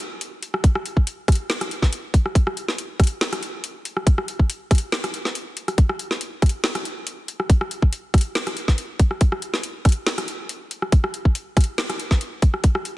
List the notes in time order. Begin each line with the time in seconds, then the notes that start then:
0.21 closed hi-hat
0.43 closed hi-hat
0.54 cross-stick
0.64 kick, closed hi-hat
0.75 cross-stick
0.86 closed hi-hat
0.97 kick
1.07 closed hi-hat
1.28 kick, cross-stick, closed hi-hat
1.32 closed hi-hat
1.35 closed hi-hat
1.50 snare
1.61 cross-stick, closed hi-hat
1.71 closed hi-hat
1.82 kick, snare
1.93 closed hi-hat
2.14 kick, closed hi-hat
2.26 cross-stick
2.35 kick, closed hi-hat
2.47 cross-stick
2.57 closed hi-hat
2.68 snare
2.78 closed hi-hat
3.00 kick, cross-stick, closed hi-hat
3.04 closed hi-hat
3.07 closed hi-hat
3.21 snare
3.33 cross-stick, closed hi-hat
3.43 closed hi-hat
3.64 closed hi-hat
3.85 closed hi-hat
3.97 cross-stick
4.07 kick, closed hi-hat
4.18 cross-stick
4.28 closed hi-hat
4.39 kick
4.50 closed hi-hat
4.71 kick, cross-stick, closed hi-hat
4.75 closed hi-hat
4.78 closed hi-hat
4.92 snare
5.04 cross-stick, closed hi-hat
5.14 closed hi-hat
5.25 snare
5.35 closed hi-hat
5.57 closed hi-hat
5.68 cross-stick, closed hi-hat
5.78 kick, closed hi-hat
5.89 cross-stick
5.99 closed hi-hat
6.11 snare
6.21 closed hi-hat
6.42 kick, cross-stick, closed hi-hat
6.46 closed hi-hat
6.49 closed hi-hat
6.64 snare
6.75 cross-stick, closed hi-hat
6.85 closed hi-hat
7.07 closed hi-hat
7.28 closed hi-hat
7.40 cross-stick
7.50 kick, closed hi-hat
7.61 cross-stick
7.71 closed hi-hat
7.82 kick
7.93 closed hi-hat
8.14 kick, cross-stick, closed hi-hat
8.18 closed hi-hat
8.21 closed hi-hat
8.35 snare
8.47 cross-stick, closed hi-hat
8.57 closed hi-hat
8.68 kick, snare
8.78 closed hi-hat
8.99 kick, closed hi-hat
9.11 cross-stick
9.21 kick, closed hi-hat
9.32 cross-stick
9.42 closed hi-hat
9.54 snare
9.63 closed hi-hat
9.85 kick, cross-stick, closed hi-hat
9.89 closed hi-hat
9.92 closed hi-hat
10.07 snare
10.18 cross-stick, closed hi-hat
10.28 closed hi-hat
10.49 closed hi-hat
10.71 closed hi-hat
10.82 cross-stick
10.92 kick, closed hi-hat
11.04 cross-stick
11.14 closed hi-hat
11.25 kick
11.35 closed hi-hat
11.57 kick, cross-stick, closed hi-hat
11.61 closed hi-hat
11.64 closed hi-hat
11.78 snare
11.90 cross-stick, closed hi-hat
12.00 closed hi-hat
12.11 kick, snare
12.21 closed hi-hat
12.42 kick, closed hi-hat
12.54 cross-stick
12.64 kick, closed hi-hat
12.75 cross-stick
12.85 closed hi-hat